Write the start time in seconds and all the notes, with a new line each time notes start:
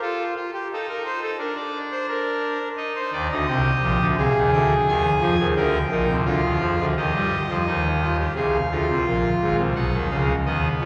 0.01 F4 A4
0.36 F4
0.54 G4
0.73 D#4 A4
0.89 A#4
1.06 C5
1.22 A4
1.38 D4 A#4
1.56 D5
1.91 C5
2.08 A#4
2.77 D#4 D#5
2.95 C5
3.12 D#2 D#3 D5
3.31 D2 D3 D#5
3.48 C2 C3 G4
3.83 A#1 A#2
4.00 D2 D3
4.17 C2 C3 G#4 F5
4.37 D#2 D#3
4.53 D2 D3 G5
4.88 D#2 D#3 G#5
5.20 F2 F3
5.39 D#2 D#3
5.56 D2 D3 A#4 G5
5.91 A#1 A#2 D#4
6.09 C2 C3
6.25 D2 D3 F4 F5
6.42 D#2 D#3
6.59 F2 F3
6.78 D2 D3
6.96 D#2 D#3 G4 D#5
7.14 G2 G3
7.49 F2 F3
7.66 D#2 D#3 D#4
8.02 F4
8.20 G4
8.35 C2 C3 G#4 F5
8.71 D2 D3 F4
8.88 C2 C3
9.07 A#1 A#2
9.42 G#1 G#2
9.58 C2 C3
9.75 B1 B2 D#4 F#5
9.92 D#2 D#3
10.10 C#2 C#3 F5
10.45 D#2 D#3 B3 D#5
10.81 F2 F3 C#5